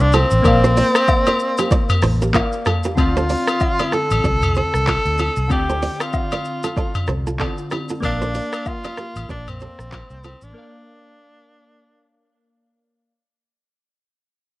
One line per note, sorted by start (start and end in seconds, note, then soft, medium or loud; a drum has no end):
0.00 0.23 C2 loud
0.00 0.40 A#3 medium
0.00 0.16 D4 medium
0.00 0.41 A#4 medium
0.00 0.42 F5 medium
0.00 shaker medium
0.13 2.03 C4 loud
0.13 0.29 F4 medium
0.13 0.28 A4 medium
0.13 high agogo medium
0.13 shaker medium
0.31 0.41 A1 loud
0.31 shaker loud
0.42 0.81 A#1 loud
0.42 2.29 A#3 medium
0.42 2.30 A#4 medium
0.42 2.31 D5 medium
0.42 kick loud
0.42 high agogo medium
0.42 shaker medium
0.47 2.32 F5 medium
0.64 0.75 A4 medium
0.64 0.74 C5 medium
0.64 shaker medium
0.77 0.92 A#4 medium
0.77 0.92 D5 medium
0.77 open hi-hat medium
0.77 shaker medium
0.95 cross-stick loud
0.95 high agogo medium
0.95 shaker loud
1.08 kick medium
1.08 low woodblock medium
1.08 shaker medium
1.26 1.38 A#4 medium
1.26 1.37 D5 medium
1.26 high agogo medium
1.26 shaker medium
1.40 shaker medium
1.58 1.69 G4 medium
1.58 1.69 A#4 medium
1.58 high agogo medium
1.58 shaker loud
1.71 1.87 A#4 medium
1.71 1.86 D5 medium
1.71 kick loud
1.71 shaker medium
1.90 mid tom loud
1.90 high agogo medium
1.90 shaker medium
2.02 2.39 A1 medium
2.02 2.18 A4 medium
2.02 2.18 C5 medium
2.02 cross-stick medium
2.02 open hi-hat medium
2.02 shaker medium
2.22 2.33 G4 medium
2.22 2.32 A#4 medium
2.22 shaker loud
2.33 2.97 A#3 medium
2.33 2.50 F4 medium
2.33 2.97 A#4 medium
2.33 2.49 A#4 medium
2.33 2.98 D5 medium
2.33 2.98 F5 medium
2.33 kick medium
2.33 clap loud
2.33 high agogo medium
2.33 low woodblock medium
2.33 shaker medium
2.52 shaker medium
2.65 2.81 F4 medium
2.65 2.81 A4 medium
2.65 cross-stick loud
2.65 mid tom medium
2.65 high agogo medium
2.65 shaker medium
2.84 2.96 G4 medium
2.84 2.95 A#4 medium
2.84 shaker loud
2.95 3.34 D2 loud
2.95 5.45 D3 medium
2.95 5.46 C4 medium
2.95 5.47 F4 medium
2.95 3.95 F4 loud
2.95 kick loud
2.95 high agogo medium
2.95 shaker medium
3.00 5.48 D5 medium
3.17 3.27 A4 medium
3.17 3.27 C5 medium
3.17 shaker medium
3.29 3.45 A#4 medium
3.29 3.44 D5 medium
3.29 open hi-hat medium
3.29 shaker medium
3.48 cross-stick loud
3.48 high agogo medium
3.48 shaker loud
3.60 kick medium
3.60 low woodblock medium
3.60 shaker medium
3.79 3.91 A#4 medium
3.79 3.90 D5 medium
3.79 high agogo medium
3.79 shaker medium
3.92 4.08 F4 medium
3.92 4.07 A4 medium
3.92 4.56 A4 loud
3.92 cross-stick medium
3.92 shaker medium
4.11 4.20 A1 medium
4.11 high agogo medium
4.11 shaker medium
4.24 4.60 C2 loud
4.24 4.39 A4 medium
4.24 4.39 D5 medium
4.24 kick loud
4.24 shaker medium
4.42 mid tom loud
4.42 high agogo medium
4.42 shaker medium
4.55 5.47 A4 loud
4.55 4.71 A4 medium
4.55 4.70 C5 medium
4.55 shaker medium
4.74 4.97 C2 medium
4.74 cross-stick loud
4.74 shaker medium
4.87 5.03 F4 medium
4.87 5.02 A4 medium
4.87 kick loud
4.87 cross-stick loud
4.87 clap loud
4.87 high agogo medium
4.87 shaker medium
5.05 5.28 D2 medium
5.05 shaker medium
5.18 5.34 F4 medium
5.18 5.34 A4 medium
5.18 high agogo medium
5.18 shaker medium
5.36 5.47 C2 medium
5.36 shaker loud
5.48 5.86 D2 loud
5.48 7.35 D3 medium
5.48 7.36 C4 medium
5.48 7.36 F4 medium
5.48 6.03 G4 loud
5.48 kick loud
5.48 high agogo medium
5.48 shaker medium
5.53 7.37 D5 medium
5.69 5.80 A4 medium
5.69 5.79 C5 medium
5.69 shaker medium
5.82 5.97 A#4 medium
5.82 5.97 D5 medium
5.82 open hi-hat medium
5.82 shaker medium
6.00 7.27 F4 medium
6.00 cross-stick loud
6.00 high agogo medium
6.00 shaker medium
6.13 kick loud
6.13 low woodblock medium
6.13 shaker medium
6.31 6.43 A#4 medium
6.31 6.43 D5 medium
6.31 high agogo medium
6.31 shaker medium
6.45 shaker medium
6.63 6.75 F4 medium
6.63 6.74 A4 medium
6.63 high agogo medium
6.63 shaker loud
6.77 6.92 A4 medium
6.77 6.91 D5 medium
6.77 kick loud
6.77 shaker medium
6.95 mid tom loud
6.95 high agogo medium
6.95 shaker medium
7.07 7.44 C2 loud
7.07 7.23 A4 medium
7.07 7.23 C5 medium
7.07 cross-stick medium
7.07 shaker medium
7.27 7.38 F4 medium
7.27 7.37 A4 medium
7.27 shaker loud
7.38 8.02 D3 medium
7.38 8.03 C4 medium
7.38 8.03 F4 medium
7.38 7.55 F4 medium
7.38 7.55 A4 medium
7.38 8.02 D5 medium
7.38 kick loud
7.38 clap loud
7.38 high agogo medium
7.38 shaker medium
7.58 shaker medium
7.71 7.87 E4 medium
7.71 7.86 G4 medium
7.71 cross-stick medium
7.71 high agogo medium
7.71 shaker medium
7.89 8.01 F4 medium
7.89 8.00 A4 medium
7.89 shaker loud
8.00 8.39 A#1 loud
8.00 10.50 A#3 medium
8.00 8.69 D4 loud
8.00 10.51 A#4 medium
8.00 10.52 D5 medium
8.00 kick loud
8.00 high agogo medium
8.00 shaker medium
8.05 10.53 F5 medium
8.22 8.32 A4 medium
8.22 8.32 C5 medium
8.22 shaker medium
8.35 8.50 A#4 medium
8.35 8.49 D5 medium
8.35 open hi-hat medium
8.35 shaker medium
8.53 cross-stick loud
8.53 high agogo medium
8.53 shaker loud
8.66 9.30 F4 loud
8.66 kick medium
8.66 low woodblock medium
8.66 shaker medium
8.84 8.96 A#4 medium
8.84 8.95 D5 medium
8.84 high agogo medium
8.84 shaker medium
8.97 9.13 G4 medium
8.97 9.12 A#4 medium
8.97 cross-stick loud
8.97 shaker medium
9.16 9.25 A1 medium
9.16 high agogo medium
9.16 shaker loud
9.29 9.65 A#1 loud
9.29 9.50 D4 loud
9.29 9.45 A#4 medium
9.29 9.44 D5 medium
9.29 kick loud
9.29 shaker medium
9.47 10.25 C4 loud
9.47 mid tom medium
9.47 high agogo medium
9.47 shaker medium
9.60 9.76 A4 medium
9.60 9.76 C5 medium
9.60 shaker medium
9.79 10.02 A#1 medium
9.79 cross-stick medium
9.79 shaker loud
9.92 10.08 F4 medium
9.92 10.07 A#4 medium
9.92 kick medium
9.92 cross-stick loud
9.92 clap loud
9.92 high agogo medium
9.92 shaker medium
10.10 10.33 C2 loud
10.10 shaker medium
10.23 10.45 C4 medium
10.23 10.39 F4 medium
10.23 10.39 A4 medium
10.23 high agogo medium
10.23 shaker medium
10.42 10.52 A1 loud
10.42 12.32 D4 loud
10.42 shaker loud
10.53 13.03 A#3 medium
10.53 13.04 A#4 medium
10.53 10.63 C#5 medium
10.58 13.05 F5 medium
10.63 13.08 D5 medium